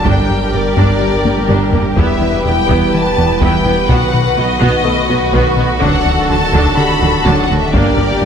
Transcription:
Already playing: D4 D5
0.05 G1 G2 G3 D4 G4 A#4 G5, taiko
0.30 G2
0.53 G1 G2 G3 A#4 D5
0.77 G1 G2 G3 D4, taiko
1.01 G3
1.25 G1 G2 G3, taiko high
1.48 G1 G2 G3 D4, taiko mid
1.73 G1 G2 G3 A#3, taiko low
1.97 E1 E2 B3 E4 G4 B4 E5, taiko
2.21 E2
2.46 E1 E2 G3 B3 G5
2.69 E1 E2 B3 E4, taiko
2.94 E3 A5
3.18 E1 E2 G3 B3
3.41 E1 E2 B3 E4 G5, taiko
3.66 E1 E2 B3
3.89 B1 B2 D#3 B3 F#4 F#5, taiko
4.14 B2
4.37 B1 B2 B3 D#5
4.61 B1 B2 B3 F#4, taiko
4.84 A3 B3 A4
5.09 B1 B2 B3
5.33 B1 B2 B3 F#4, taiko
5.57 B1 B2 B3 D#4
5.81 D1 D2 D3 F#3 D4 A4 F#5, taiko
6.05 D2
6.29 D2 D3 F#3 A5
6.53 D2 D3 F#3 D4, taiko
6.77 D3 G4 B5
7.02 D2 D3 F#3
7.25 D2 D3 F#3 D4 A5, taiko
7.43 F#5
7.50 D2 D3 F#3 A3
7.59 E5
7.73 G1 G2 A#3 D4 G4 A#4 D5, taiko
7.98 G2
8.22 G2 G3 A#3

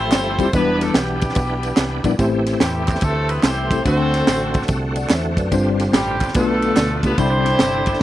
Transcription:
Already playing: F3 A3 C4 E4 G4 A4 C5 E5
0.00 A1
0.12 G1, snare, clap, ride, tambourine
0.39 F1 G3 C4 E4 F4 G4, kick, ride, tambourine
0.52 E1 E3 G3 B3 D4 E4 G4 B4, kick, ride, tambourine
0.81 A3 A4, snare, ride, tambourine
0.94 B1 G3 B3 D4 G4, snare, clap, ride, tambourine
1.21 kick, ride, tambourine
1.29 snare
1.35 B1, kick, ride, tambourine
1.63 ride, tambourine
1.77 C2, snare, clap, ride, tambourine
2.04 A#1 G3 B3 D4 E4 D5, kick, ride, tambourine
2.18 A1 A2 A3 C4 E4 G4 C5, kick, ride, tambourine
2.46 snare, ride, tambourine
2.60 E2 G3 C4 E4 G4, snare, clap, ride, tambourine
2.87 kick, clap, ride, tambourine
2.95 snare
3.01 D2 A3 C4 E4 A4, kick, ride, tambourine
3.29 B3 B4, ride, tambourine
3.43 C2 C4 E4 G4 C5, snare, clap, ride, tambourine
3.71 A3 C4 E4 G4 A4, kick, ride, tambourine
3.85 D2 D3 A3 C4 D4 F#4 A4 C5, kick, ride, tambourine
4.13 snare, ride, tambourine
4.27 A1, snare, clap, ride, tambourine
4.54 kick, ride, tambourine
4.62 snare
4.68 C2, kick, ride, tambourine
4.96 D5 F#5, ride, tambourine
5.10 E2 C5 E5, snare, clap, ride, tambourine
5.37 F#2 B4 D5, kick, ride, tambourine
5.51 G1 G2 G3 C4 D4 F4 C5, kick, ride, tambourine
5.79 snare, ride, tambourine
5.93 A1 G3 C4 D4 G4, snare, clap, ride, tambourine
6.20 kick, clap, ride, tambourine
6.28 snare
6.34 B1 B2 A3 B3 D4 F4 A4 B4, kick, ride, tambourine
6.62 ride, tambourine
6.77 D2, snare, clap, ride, tambourine
7.03 C#2 A3 B3 D4 F4 G4 B4, kick, ride, tambourine
7.18 C2 C3 G3 C4 D4 E4 G4 C5 B5, kick, ride, tambourine
7.45 snare, ride, tambourine
7.59 G1, snare, clap, ride, tambourine
7.86 kick, ride, tambourine
7.94 snare

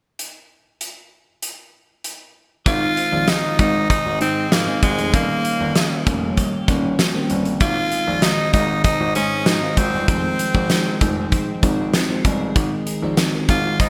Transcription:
0.19 closed hi-hat
0.81 closed hi-hat
1.42 closed hi-hat
2.04 closed hi-hat
2.66 G#1 D#3 G#3 C4 D#4 F4, kick, closed hi-hat
2.97 C4, closed hi-hat
3.12 A#1 D#3 G#3 C4 D#4
3.28 G#3 D#4, snare, closed hi-hat
3.58 G#1 D#3 G#3 C4 D#4, kick, closed hi-hat
3.90 D#4 G#4, kick, closed hi-hat
4.06 G#1
4.20 G#2 D#3 G#3 C4 D#4, closed hi-hat
4.52 G#2 A#3 G#4, snare, closed hi-hat
4.67 D#3 G#3 C4 D#4
4.83 G#1 G#3 C4, kick, closed hi-hat
4.98 F1, closed hi-hat
5.13 G1 D#3 G3 A#3 C#4, kick, closed hi-hat
5.45 C#4, closed hi-hat
5.59 G1 D#3 G3 A#3 C#4
5.75 A#3, snare, closed hi-hat
6.06 F1 D#3 G3 A#3 C#4, kick, closed hi-hat
6.37 G4, kick, closed hi-hat
6.68 G1 D#3 G3 A#3 C#4, kick, closed hi-hat
6.99 G4, snare, closed hi-hat
7.14 D#3 G3 A#3 C4
7.30 G1 C#4, closed hi-hat
7.45 closed hi-hat
7.60 G#1 D#3 G#3 C4 D#4 F4, kick, closed hi-hat
7.92 G#3, closed hi-hat
8.06 A#1 D#3 G#3 C4 D#4
8.22 D#3 D#4, snare, closed hi-hat
8.53 G#1 D#3 G#3 C4 D#4, kick, closed hi-hat
8.84 C4 D#4, kick, closed hi-hat
9.00 G#1
9.15 G#2 D#3 G#3 C#4 D#4 C5, closed hi-hat
9.46 G#2 C4 D#4, snare, closed hi-hat
9.61 D#3 G#3 C4 F4
9.77 G#1 G#3 C4, kick, closed hi-hat
9.93 G1
10.08 F1 D#3 F3 G#3 C4 D#4, kick, closed hi-hat
10.39 G#3, closed hi-hat
10.55 G#1 F3 G#3 C4 D#4, kick
10.70 D#3, snare, closed hi-hat
11.01 F1 F3 G#3 C4 D#4, kick, closed hi-hat
11.32 C4, kick, closed hi-hat
11.62 G#1 F3 G#3 C4 D#4, kick, closed hi-hat
11.94 C4, snare, closed hi-hat
12.09 F3 G#3 C4 D#4
12.25 G1 G#3, kick, closed hi-hat
12.55 G#1 D#3 G#3 C4 D#4, kick, closed hi-hat
12.87 G#3, closed hi-hat
13.02 A#1 D#3 G#3 C4 D#4
13.17 D#3, snare, closed hi-hat
13.48 G#1 D#3 G#3 C4 D#4 F4, kick, closed hi-hat
13.80 C4 D#4, kick, closed hi-hat

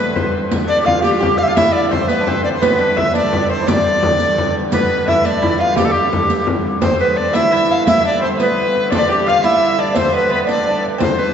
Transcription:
Already playing: G2 D3 B3 B4
0.16 C5, riq, frame drum
0.51 riq, frame drum
0.68 D4 D5, frame drum
0.82 G4 F5
0.86 F4 F5, frame drum
1.02 G4, riq, frame drum
1.11 F4
1.18 G4, riq
1.23 frame drum
1.38 F5
1.43 E5
1.48 F4 F5
1.56 E4 E5, riq, frame drum
1.72 D5, frame drum
1.90 C4 C5, frame drum
2.08 B3 B4, riq, frame drum
2.21 D4
2.27 C4 C5, riq, frame drum
2.44 D5
2.56 C5
2.62 G2 D3 B3 B4, riq, frame drum
2.79 D4, frame drum
2.97 E4 E5, frame drum
3.14 D4 D5, riq, frame drum
3.27 D4
3.33 riq, frame drum
3.37 D4
3.49 C4 C5
3.61 E4
3.67 D4 D5, riq, frame drum
3.86 frame drum
4.03 frame drum
4.20 riq, frame drum
4.38 riq, frame drum
4.72 B3 B4, riq, frame drum
4.91 frame drum
5.08 E4 E5, frame drum
5.25 D4 D5, riq, frame drum
5.42 E4, riq, frame drum
5.59 F4 F5
5.75 G4, riq, frame drum
5.85 A4
5.90 G4
5.95 riq, frame drum
6.12 riq, frame drum
6.30 riq
6.47 frame drum
6.81 G2 D3 C4 C5, riq, frame drum
6.99 B3 B4, riq
7.16 D4 D5, frame drum
7.33 E4 E5, riq, frame drum
7.50 E4 E5, frame drum
7.71 F5
7.86 E4 E5, riq, frame drum
8.05 D4 D5, riq
8.21 C4 C5, frame drum
8.39 B3 B4, riq, frame drum
8.57 frame drum
8.91 D4 D5, riq, frame drum
8.95 C5 D5
9.08 G4, riq
9.27 F4 F5, frame drum
9.44 E4 E5, riq, frame drum
9.62 frame drum
9.78 D4 D5
9.95 C4 C5, riq, frame drum
10.13 B3 B4, riq, frame drum
10.29 B3 B4
10.34 B4
10.47 D4 D5, riq, frame drum
10.66 D4, frame drum
10.84 frame drum
10.98 G2 D3 C4 C5, riq, frame drum
11.19 B4, riq

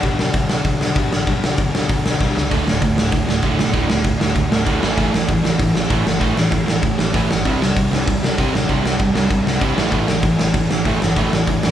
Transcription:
0.03 B1 G2 D3 G3, kick, open hi-hat
0.19 B1 G2 D3, snare
0.34 B1 G2 D3, kick, open hi-hat
0.50 B1 G2 D3, snare
0.65 B1 G2 D3, kick, open hi-hat
0.81 B1 G2 D3, snare
0.95 B1 G2 D3 G3, kick, open hi-hat
1.11 A1 G2 D3, snare
1.27 B1 G2 D3 G3, kick, open hi-hat
1.43 B1 G2 D3, snare
1.58 B1 G2 D3, kick, open hi-hat
1.74 B1 G2 D3, snare
1.89 B1 G2 D3, kick, open hi-hat
2.06 B1 G2 D3, snare
2.21 B1 G2 D3 G3, kick, snare
2.35 C#2 G2 D3, snare
2.51 D1 D2 A2 D3, kick, open hi-hat
2.67 D1 D2 A2, snare
2.82 D1 D2 A2, kick, open hi-hat
2.97 D1 D2 A2, snare
3.12 D1 D2 A2, kick, open hi-hat
3.28 D1 D2 A2, snare
3.43 D2 A2 D3, kick, open hi-hat
3.58 B1 D2 A2, snare
3.73 D1 D2 A2 D3, kick, open hi-hat
3.88 D1 D2 A2, snare
4.04 D1 D2 A2, kick, open hi-hat
4.19 D1 D2 A2, snare
4.35 D1 D2 A2, kick, open hi-hat
4.51 D1 D2 A2, snare
4.67 D1 D2 A2 D3, kick, open hi-hat
4.82 A1 A2 E3 A3, snare
4.96 A1 A2 E3 A3, kick, open hi-hat
5.12 A1 A2 E3, snare
5.27 A1 A2 E3, kick, open hi-hat
5.44 A1 A2 E3, snare
5.57 A1 A2 E3, kick, open hi-hat
5.74 A1 A2 E3, snare
5.87 A1 A2 E3 A3, kick, open hi-hat
6.05 G1 A2 E3, snare
6.20 A1 A2 E3 A3, kick, open hi-hat
6.35 A1 A2 E3, snare
6.51 A1 A2 E3, kick, open hi-hat
6.66 A1 A2 E3, snare
6.82 A1 A2 E3, kick, open hi-hat
6.98 A1 A2 E3, snare
7.14 A1 A2 E3 A3, kick, open hi-hat
7.30 G1 A2 E3, snare
7.45 C2 C3 G3 C4, kick, open hi-hat
7.61 C2 C3 G3, snare
7.76 C2 C3 G3, kick, open hi-hat
7.91 C2 C3 G3, snare
8.07 C2 C3 G3, kick, open hi-hat
8.23 C2 C3 G3, snare
8.38 C2 C3 G3 C4, kick, open hi-hat
8.54 A1 C3 G3, snare
8.69 C2 C3 G3 C4, kick, open hi-hat
8.85 C2 C3 G3, snare
8.99 C2 C3 G3, kick, open hi-hat
9.14 C2 C3 G3, snare
9.29 C2 C3 G3, kick, open hi-hat
9.44 C2 C3 G3, snare
9.59 C2 C3 G3 C4, kick, open hi-hat
9.74 A1 A2 E3 A3, snare
9.90 A1 A2 E3 A3, kick, open hi-hat
10.07 A1 A2 E3, snare
10.23 A1 A2 E3, kick, open hi-hat
10.38 A1 A2 E3, snare
10.54 A1 A2 E3, kick, open hi-hat
10.70 A1 A2 E3, snare
10.84 A1 A2 E3 A3, kick, open hi-hat
11.00 G1 A2 E3, snare
11.16 A1 A2 E3 A3, kick, open hi-hat
11.32 A1 A2 E3, snare
11.47 A1 A2 E3, kick, open hi-hat
11.62 A1 A2 E3, snare

